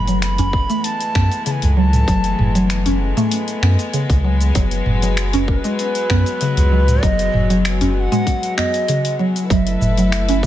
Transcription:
0.00 0.66 F#1 loud
0.00 4.52 E3 medium
0.00 9.46 G#3 medium
0.00 4.52 A3 medium
0.00 9.47 B3 medium
0.00 0.18 B5 loud
0.07 0.22 F#3 medium
0.07 open hi-hat soft
0.07 shaker medium
0.22 0.86 B5 loud
0.22 finger snap medium
0.22 open hi-hat medium
0.22 shaker soft
0.38 0.47 C#4 medium
0.38 open hi-hat soft
0.38 udu medium
0.38 shaker soft
0.53 kick loud
0.70 0.84 A3 medium
0.70 open hi-hat soft
0.70 shaker medium
0.84 1.46 A5 loud
0.84 open hi-hat medium
0.84 shaker medium
1.01 open hi-hat soft
1.01 shaker soft
1.15 1.29 F#2 medium
1.15 1.31 B3 medium
1.15 finger snap medium
1.15 kick loud
1.31 open hi-hat soft
1.31 shaker medium
1.46 1.76 C#3 loud
1.46 1.52 A5 medium
1.46 open hi-hat medium
1.46 shaker soft
1.51 1.75 G#5 medium
1.62 2.05 C#2 medium
1.62 open hi-hat soft
1.62 udu medium
1.62 shaker soft
1.77 2.07 F#3 medium
1.77 2.97 A5 medium
1.93 mid tom medium
1.93 open hi-hat soft
1.93 shaker medium
2.08 2.34 F#1 loud
2.08 2.53 F#3 loud
2.08 kick loud
2.08 open hi-hat medium
2.08 shaker medium
2.24 open hi-hat soft
2.24 shaker soft
2.39 3.13 F#1 loud
2.39 mid tom medium
2.39 udu medium
2.55 2.69 F#3 medium
2.55 open hi-hat soft
2.55 shaker medium
2.70 finger snap medium
2.70 open hi-hat medium
2.70 shaker medium
2.86 2.94 C#4 medium
2.86 open hi-hat soft
2.86 udu medium
2.86 shaker soft
3.17 3.31 A3 loud
3.17 mid tom medium
3.17 open hi-hat soft
3.17 shaker medium
3.31 open hi-hat medium
3.31 shaker medium
3.48 open hi-hat soft
3.48 shaker soft
3.62 3.76 F#2 medium
3.62 3.78 B3 medium
3.62 finger snap medium
3.62 udu medium
3.79 open hi-hat soft
3.79 shaker medium
3.93 4.23 C#3 medium
3.93 open hi-hat medium
3.93 shaker medium
4.10 4.52 C#2 medium
4.10 kick loud
4.10 open hi-hat soft
4.10 shaker soft
4.24 4.54 F#3 medium
4.41 open hi-hat soft
4.41 shaker medium
4.55 4.82 F#1 loud
4.55 9.46 F#3 medium
4.55 5.01 F#3 loud
4.55 kick loud
4.55 open hi-hat medium
4.55 shaker medium
4.71 open hi-hat soft
4.71 shaker soft
4.86 5.61 F#1 loud
4.86 mid tom medium
4.86 udu medium
5.02 5.17 F#3 medium
5.02 open hi-hat soft
5.02 shaker medium
5.17 finger snap medium
5.17 open hi-hat medium
5.17 shaker medium
5.33 5.42 C#4 medium
5.33 open hi-hat soft
5.33 udu medium
5.33 shaker soft
5.48 7.04 B4 medium
5.48 kick loud
5.64 5.78 G#3 loud
5.64 open hi-hat soft
5.64 shaker medium
5.79 open hi-hat medium
5.79 shaker medium
5.95 open hi-hat soft
5.95 shaker soft
6.10 6.24 F#2 loud
6.10 6.25 B3 medium
6.10 finger snap medium
6.10 kick medium
6.26 open hi-hat soft
6.26 shaker medium
6.41 6.71 C#3 loud
6.41 open hi-hat medium
6.41 shaker soft
6.57 6.99 C#2 medium
6.57 open hi-hat soft
6.57 udu medium
6.57 shaker soft
6.72 7.01 F#3 medium
6.88 mid tom medium
6.88 open hi-hat soft
6.88 shaker medium
7.03 7.29 F#1 loud
7.03 7.49 F#3 loud
7.03 7.65 D#5 loud
7.03 kick loud
7.03 open hi-hat medium
7.03 shaker medium
7.19 open hi-hat soft
7.19 shaker soft
7.34 8.08 F#1 loud
7.34 mid tom medium
7.34 udu medium
7.50 7.64 F#3 medium
7.50 open hi-hat soft
7.50 shaker medium
7.65 finger snap medium
7.65 open hi-hat medium
7.65 shaker soft
7.81 7.89 C#4 medium
7.81 open hi-hat soft
7.81 udu medium
7.81 shaker soft
7.89 7.96 G#5 medium
7.96 8.01 G#5 loud
8.00 8.57 F#5 loud
8.12 8.26 G#3 loud
8.12 mid tom medium
8.12 open hi-hat soft
8.12 shaker medium
8.27 kick medium
8.27 open hi-hat medium
8.27 shaker medium
8.43 open hi-hat soft
8.43 shaker soft
8.57 8.73 B3 medium
8.57 9.15 D#5 loud
8.57 finger snap medium
8.57 udu medium
8.74 open hi-hat soft
8.74 shaker medium
8.88 9.18 C#3 loud
8.88 open hi-hat medium
8.88 shaker medium
9.05 open hi-hat soft
9.05 shaker soft
9.19 9.49 F#3 medium
9.36 open hi-hat soft
9.36 shaker medium
9.50 9.77 F#1 loud
9.50 9.96 F#3 loud
9.50 10.46 A3 medium
9.50 10.46 E4 medium
9.50 10.46 A4 medium
9.50 10.46 B4 medium
9.50 10.46 E5 loud
9.50 kick loud
9.50 open hi-hat medium
9.50 shaker soft
9.67 open hi-hat soft
9.81 10.46 F#1 loud
9.81 mid tom medium
9.81 shaker medium
9.97 10.12 F#3 medium
9.97 open hi-hat soft
9.97 shaker soft
10.12 finger snap medium
10.12 open hi-hat medium
10.12 shaker soft
10.29 10.37 C#4 medium
10.29 open hi-hat soft
10.43 kick loud

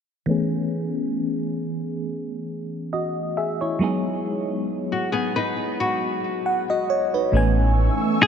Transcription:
0.26 3.75 E3 medium
0.26 3.76 A3 medium
0.26 3.77 B3 medium
0.26 3.77 C#4 medium
0.31 2.90 G#4 medium
2.93 3.35 F#4 soft
2.93 3.34 D#5 medium
3.37 3.60 G#4 medium
3.37 3.59 E5 medium
3.61 4.03 E4 medium
3.61 4.02 C#5 medium
3.79 7.28 F#3 medium
3.79 7.29 G#3 medium
3.79 7.30 B3 medium
3.79 6.42 D#4 medium
3.84 6.43 G#4 medium
4.92 5.11 F#4 medium
5.12 5.35 B3 medium
5.12 5.35 G#4 medium
5.36 5.78 D#4 medium
5.36 5.78 B4 medium
5.80 7.09 F#4 medium
6.46 6.68 F#5 medium
6.70 6.89 F#4 medium
6.70 6.89 D#5 medium
6.90 7.12 C#5 medium
7.14 7.56 D#4 soft
7.14 7.55 B4 medium
7.32 7.89 A1 loud
7.32 8.27 E3 medium
7.32 8.27 A3 medium
7.32 8.27 B3 medium
7.32 8.27 C#4 medium
7.32 8.27 G#5 medium
7.32 8.27 C#6 medium
7.32 8.27 E6 medium
7.37 8.27 G#5 medium
8.23 8.27 G#4 medium

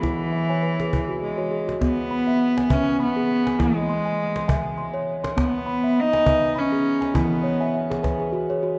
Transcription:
0.00 1.21 E3 medium
0.00 1.78 E3 medium
0.00 0.33 E4 medium
0.00 0.20 F#5 medium
0.00 0.20 B5 medium
0.00 cajon bass soft
0.00 cajon slap soft
0.21 cajon slap soft
0.32 0.60 E5 medium
0.50 0.77 C#5 medium
0.50 0.79 G#5 medium
0.50 cajon slap soft
0.63 0.90 B4 medium
0.80 1.07 G#4 medium
0.80 cajon slap soft
0.93 0.95 E4 medium
0.93 cajon bass soft
1.09 1.37 F#4 medium
1.09 cajon slap soft
1.22 1.78 G#3 medium
1.22 1.50 G#4 medium
1.38 1.66 F#4 medium
1.38 1.68 C#5 medium
1.51 1.79 G#4 medium
1.67 1.95 F#4 medium
1.67 cajon slap soft
1.81 3.56 B3 medium
1.81 2.73 B3 loud
1.81 cajon bass medium
1.81 cajon slap soft
2.11 2.57 B5 medium
2.27 2.57 E5 medium
2.27 cajon slap soft
2.57 3.00 G#5 medium
2.57 cajon slap soft
2.70 3.01 C#4 loud
2.70 3.17 B4 medium
2.70 3.00 E5 medium
2.70 cajon bass medium
3.00 3.62 B3 loud
3.00 3.46 B5 medium
3.16 3.46 G#4 medium
3.47 3.76 G#5 medium
3.47 cajon slap soft
3.59 5.34 E3 medium
3.59 5.08 G#3 medium
3.59 3.89 E4 medium
3.59 cajon bass medium
3.59 cajon slap soft
3.89 4.35 C6 medium
4.06 4.35 G#5 medium
4.36 4.76 C6 medium
4.36 cajon slap soft
4.48 4.95 E5 medium
4.48 4.78 G#5 medium
4.48 cajon bass medium
4.77 5.22 C6 medium
4.94 5.24 C#5 medium
5.24 5.54 C6 medium
5.24 cajon slap soft
5.37 7.11 B3 medium
5.37 cajon bass medium
5.37 cajon slap soft
5.41 6.02 B3 loud
5.66 6.13 B5 medium
5.84 6.13 E5 medium
5.84 cajon slap soft
6.00 6.60 D#4 loud
6.13 6.56 G#5 medium
6.13 cajon slap soft
6.26 6.72 B4 medium
6.26 6.56 E5 medium
6.26 cajon bass medium
6.56 7.17 C#4 medium
6.56 7.02 B5 medium
6.72 7.02 G#4 medium
7.01 7.31 G#5 medium
7.01 cajon slap soft
7.14 8.79 E3 medium
7.14 8.04 B3 medium
7.14 7.44 E4 medium
7.14 cajon bass medium
7.43 7.72 C#5 medium
7.60 7.73 E5 medium
7.60 7.90 G#5 medium
7.74 8.02 E5 medium
7.90 8.18 G#4 medium
7.90 cajon slap soft
8.03 8.31 B4 medium
8.03 8.33 G#5 medium
8.03 cajon bass medium
8.03 cajon slap soft
8.19 8.47 G#4 medium
8.19 cajon slap soft
8.33 8.61 F#4 medium
8.33 cajon slap soft
8.50 8.77 G#4 medium
8.50 8.79 C#5 medium
8.63 8.79 F#4 medium

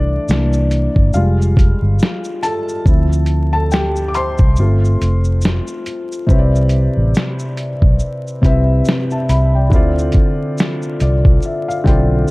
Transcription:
0.00 0.17 C2 loud
0.00 0.25 E3 medium
0.00 0.25 A3 medium
0.00 0.29 D4 medium
0.00 0.67 D5 loud
0.28 0.87 C2 loud
0.28 0.88 E3 medium
0.28 0.89 A#3 medium
0.28 0.89 D4 medium
0.28 snare loud
0.28 shaker medium
0.53 shaker medium
0.71 closed hi-hat medium
0.71 shaker soft
0.96 1.12 G1 medium
0.96 kick medium
1.13 1.73 F1 loud
1.13 1.74 G3 medium
1.13 1.74 G#3 medium
1.13 1.74 F4 medium
1.13 2.47 F5 medium
1.13 shaker medium
1.42 shaker medium
1.57 kick medium
1.57 closed hi-hat medium
1.57 shaker soft
1.82 1.98 G1 medium
1.99 snare loud
1.99 shaker medium
2.24 shaker soft
2.43 3.50 A4 medium
2.43 3.51 A5 loud
2.43 closed hi-hat medium
2.43 shaker medium
2.69 shaker medium
2.86 4.35 D2 loud
2.86 4.54 F3 medium
2.86 4.54 C4 medium
2.86 4.54 E4 medium
2.86 kick loud
2.86 shaker medium
3.12 shaker medium
3.26 closed hi-hat medium
3.26 shaker soft
3.53 3.71 A4 medium
3.53 3.72 A5 loud
3.71 4.07 G4 medium
3.71 4.06 G5 medium
3.71 snare loud
3.71 shaker medium
3.96 shaker medium
4.08 4.14 D6 medium
4.14 5.83 C5 medium
4.14 5.82 C6 loud
4.14 closed hi-hat medium
4.14 shaker soft
4.38 4.55 C2 medium
4.38 kick medium
4.38 shaker soft
4.56 4.95 G1 loud
4.56 5.17 A3 medium
4.56 5.18 C4 medium
4.56 5.18 F4 medium
4.56 shaker medium
4.85 shaker medium
5.01 5.59 F1 medium
5.01 closed hi-hat medium
5.01 shaker soft
5.24 shaker soft
5.41 snare loud
5.41 shaker medium
5.67 shaker soft
5.86 closed hi-hat medium
5.86 shaker medium
6.12 shaker medium
6.26 6.87 C2 loud
6.26 7.69 C3 medium
6.26 7.69 C4 medium
6.26 7.70 E4 medium
6.26 kick loud
6.26 shaker medium
6.31 7.71 B4 medium
6.31 6.38 C#5 medium
6.39 7.75 D5 medium
6.55 shaker soft
6.69 closed hi-hat medium
6.69 shaker soft
6.97 7.12 A1 medium
7.15 snare loud
7.15 shaker medium
7.39 shaker medium
7.57 closed hi-hat medium
7.57 shaker soft
7.82 7.98 B1 medium
7.82 kick medium
7.99 shaker medium
8.27 shaker soft
8.41 8.80 C2 medium
8.41 9.14 C3 medium
8.41 9.15 C4 medium
8.41 9.16 E4 medium
8.41 kick medium
8.41 closed hi-hat medium
8.41 shaker soft
8.46 9.16 B4 medium
8.46 8.88 E5 loud
8.85 snare loud
8.85 shaker medium
9.10 9.28 E5 medium
9.10 9.29 A5 medium
9.10 shaker soft
9.29 9.72 C2 medium
9.29 9.53 E5 medium
9.29 9.52 B5 medium
9.29 closed hi-hat medium
9.29 shaker medium
9.55 9.74 D5 medium
9.55 9.95 G5 medium
9.70 10.09 D2 loud
9.70 11.12 D3 medium
9.70 11.13 C4 medium
9.70 11.13 E4 medium
9.70 kick loud
9.70 shaker medium
9.74 11.14 F4 medium
9.74 11.01 D5 medium
9.98 shaker medium
10.12 kick medium
10.12 closed hi-hat medium
10.12 shaker soft
10.58 snare loud
10.58 shaker medium
10.82 shaker medium
11.00 11.38 C2 medium
11.00 11.41 D5 medium
11.00 closed hi-hat medium
11.00 shaker soft
11.25 kick medium
11.42 11.67 E5 medium
11.42 shaker medium
11.68 11.85 F5 medium
11.68 shaker soft
11.84 12.23 B1 loud
11.84 12.31 D3 medium
11.84 12.31 C4 medium
11.84 12.31 E4 medium
11.84 12.26 G5 medium
11.84 kick medium
11.84 closed hi-hat medium
11.84 shaker soft
11.88 12.31 F4 medium
11.88 12.31 D5 medium
12.28 shaker medium

